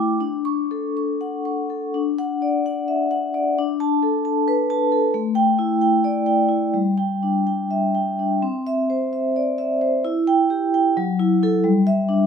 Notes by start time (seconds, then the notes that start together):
Already playing: A3 E4 G5 D6
0.20 D4
0.45 C#6
0.71 A4
0.97 C#6
1.21 F#5
1.45 C#6
1.70 A4
1.94 D4
2.18 F#5
2.42 D5
2.66 F#5
2.88 E5
3.11 F#5
3.34 D5
3.58 D4
3.80 A5
4.03 A4
4.25 A5
4.48 B4
4.70 A5
4.92 A4
5.14 A3
5.35 G5
5.59 E4
5.81 G5
6.04 D5
6.26 G5
6.49 E4
6.74 G3
6.98 G5
7.23 D4
7.47 G5
7.71 E5
7.95 G5
8.19 D4
8.43 C4
8.67 E5
8.90 C5
9.13 E5
9.36 D5
9.58 E5
9.81 C5
10.05 E4
10.27 G5
10.50 G4
10.74 G5
10.97 F#3
11.20 E4
11.43 E4 A4
11.64 G3
11.87 E5
12.09 D4